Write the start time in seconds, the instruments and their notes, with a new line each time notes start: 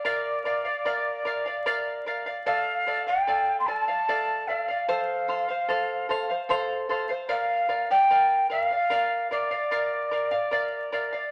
Already playing: quena D5
0.05 charango A#4 D5 F5
0.45 charango A#4 D5 F5
0.65 charango D5 F5
0.85 charango A#4 D5 F5
1.25 charango A#4 D5 F5
1.46 charango D5 F5
1.66 charango A#4 D5 F5
2.06 charango A#4 D5 F5
2.26 charango D5 F5
2.46 charango A4 D5 F5, quena F5
2.87 charango A4 D5 F5
3.07 charango D5 F5, quena G5
3.27 charango A4 D5 F5
3.60 quena C6
3.67 charango A4 D5 F5, quena A5
3.88 charango D5 F5
4.08 charango A4 D5 F5
4.48 charango A4 D5 F5, quena E5
4.59 quena F5
4.68 charango D5 F5
4.88 charango A4 C5 F5
5.28 charango A4 C5 F5
5.48 charango C5 F5
5.68 charango A4 C5 F5
6.09 charango A4 C5 F5
6.30 charango C5 F5
6.49 charango A4 C5 F5
6.89 charango A4 C5 F5
7.09 charango C5 F5
7.29 charango A#4 D5 F5, quena F5
7.69 charango A#4 D5 F5
7.90 charango D5 F5, quena G5
8.10 charango A#4 D5 F5
8.50 charango A#4 D5 F5, quena E5
8.62 quena F5
8.71 charango D5 F5
8.90 charango A#4 D5 F5
9.31 charango A#4 D5 F5, quena D5
9.51 charango D5 F5
9.71 charango A#4 D5 F5
10.11 charango A#4 D5 F5
10.31 charango D5 F5
10.51 charango A#4 D5 F5
10.92 charango A#4 D5 F5
11.12 charango D5 F5